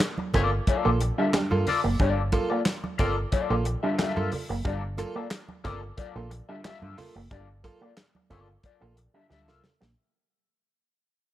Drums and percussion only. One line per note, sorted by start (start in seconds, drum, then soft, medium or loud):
0.00 snare loud
0.00 clap loud
0.00 closed hi-hat loud
0.18 high conga medium
0.34 kick medium
0.34 closed hi-hat medium
0.34 muted conga soft
0.34 low conga medium
0.67 kick medium
0.67 closed hi-hat medium
0.67 high conga medium
1.01 closed hi-hat medium
1.01 muted conga soft
1.33 snare loud
1.33 clap medium
1.33 closed hi-hat medium
1.33 muted conga soft
1.33 high conga medium
1.51 high conga medium
1.67 open hi-hat medium
1.67 muted conga soft
1.67 low conga medium
2.00 kick loud
2.00 closed hi-hat medium
2.00 muted conga soft
2.32 kick loud
2.32 closed hi-hat medium
2.32 muted conga soft
2.32 high conga medium
2.66 snare loud
2.66 clap loud
2.66 closed hi-hat loud
2.66 muted conga soft
2.84 high conga medium
2.99 kick medium
2.99 closed hi-hat medium
2.99 muted conga soft
2.99 low conga medium
3.32 kick medium
3.32 closed hi-hat medium
3.32 high conga medium
3.65 closed hi-hat medium
3.65 muted conga soft
3.99 snare loud
3.99 clap medium
3.99 closed hi-hat medium
3.99 muted conga soft
3.99 high conga medium
4.17 high conga medium
4.32 open hi-hat medium
4.32 muted conga soft
4.32 low conga medium
4.65 kick loud
4.65 closed hi-hat medium
4.98 closed hi-hat medium
4.98 muted conga soft
4.98 high conga medium
5.31 snare loud
5.31 clap loud
5.31 closed hi-hat loud
5.49 high conga medium
5.65 kick medium
5.65 closed hi-hat medium
5.65 muted conga soft
5.65 low conga medium
5.98 kick medium
5.98 closed hi-hat medium
5.98 muted conga soft
5.98 high conga medium
6.31 closed hi-hat medium
6.31 muted conga soft
6.65 snare loud
6.65 clap medium
6.65 closed hi-hat medium
6.65 muted conga soft
6.65 high conga medium
6.82 high conga medium
6.98 open hi-hat medium
6.98 low conga medium
7.31 kick loud
7.31 closed hi-hat medium
7.31 muted conga soft
7.64 kick medium
7.64 closed hi-hat medium
7.64 muted conga soft
7.64 high conga medium
7.97 snare loud
7.97 clap loud
7.97 closed hi-hat medium
7.97 muted conga soft
8.15 high conga medium
8.31 kick medium
8.31 closed hi-hat medium
8.31 muted conga soft
8.31 low conga medium
8.63 kick medium
8.63 closed hi-hat medium
8.63 high conga medium
8.97 closed hi-hat medium
8.97 muted conga soft
9.31 snare medium
9.31 high conga medium
9.48 snare medium
9.48 high conga medium
9.64 snare medium
9.64 low conga medium
9.82 snare loud